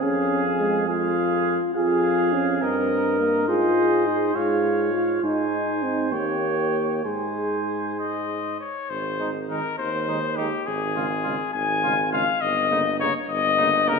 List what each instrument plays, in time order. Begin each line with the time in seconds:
0.02 tuba F2, euphonium C#4, trumpet G#4 F5, french horn G#4
0.60 euphonium G#3
0.88 euphonium G#3, french horn F4, trumpet G#4 F5
1.75 tuba F2, euphonium F4, trumpet G#4 F5, french horn G#4
2.33 euphonium C#4
2.61 tuba G2, euphonium C4, trumpet A#4 D#5, french horn A#4
3.19 euphonium A#3
3.48 tuba G#2, euphonium F4, french horn G#4, trumpet C5 D#5
4.06 euphonium D#4
4.35 tuba G#2, euphonium G#3, french horn F4, trumpet C#5 F5
4.94 euphonium F4
5.23 tuba G#2, euphonium D#4, french horn D#4, trumpet C5 G#5
5.83 euphonium C4
6.12 tuba D#2, euphonium A#3, french horn G4, trumpet C#5 G5
7.05 tuba G#2, euphonium G#3, french horn G#4, trumpet C5 G#5
7.99 trumpet D#5
8.60 trumpet C#5
8.90 tuba G#1, trumpet C5
9.20 euphonium D#3, french horn G#3, trumpet D#4
9.49 euphonium D#3, french horn G#3, trumpet D#4 A#4
9.78 tuba D#2, trumpet C5
10.08 euphonium D#3, french horn G#3, trumpet D#4
10.36 euphonium D#3, french horn G#3, trumpet D#4 G4
10.66 tuba G#1, trumpet G#4
10.95 euphonium C#3, french horn G#3, trumpet F4
11.24 euphonium C#3, french horn G#3, trumpet F4
11.53 tuba G#1, trumpet G#5
11.83 euphonium C#3, french horn G#3, trumpet F4
12.12 euphonium C#3, french horn G#3, trumpet F4 F5
12.41 tuba G1, trumpet D#5
12.71 euphonium C#3, french horn A#3, trumpet D#4
13.00 euphonium C#3, french horn A#3, trumpet D#4 C#5
13.29 tuba G1, trumpet D#5
13.57 euphonium C#3, french horn A#3, trumpet D#4
13.86 euphonium C#3, french horn A#3, trumpet D#4 A#4